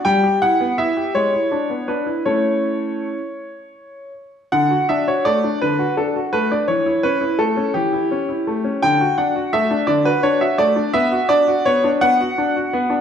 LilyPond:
\new Staff \with { instrumentName = "Grand piano" } { \time 6/8 \key d \major \tempo 4. = 56 << { g''8 fis''8 e''8 cis''4 b'8 | cis''2~ cis''8 r8 | fis''8 e''16 cis''16 d''8 b'8 a'8 b'16 d''16 | cis''8 b'8 a'8 g'4. |
g''8 fis''8 e''8 d''16 b'16 cis''16 e''16 d''8 | e''8 d''8 cis''8 fis''4. | } \\ { g16 g'16 e'16 b16 e'16 g'16 gis16 e'16 d'16 b16 d'16 e'16 | <a cis' e'>4. r4. | d16 fis'16 d'16 fis'16 a16 d'16 d16 fis'16 d'16 fis'16 a16 d'16 | e16 e'16 cis'16 e'16 a16 cis'16 e16 e'16 cis'16 e'16 a16 cis'16 |
d16 fis'16 d'16 fis'16 a16 d'16 d16 fis'16 d'16 fis'16 a16 d'16 | b16 fis'16 d'16 fis'16 b16 d'16 b16 fis'16 d'16 fis'16 b16 d'16 | } >> }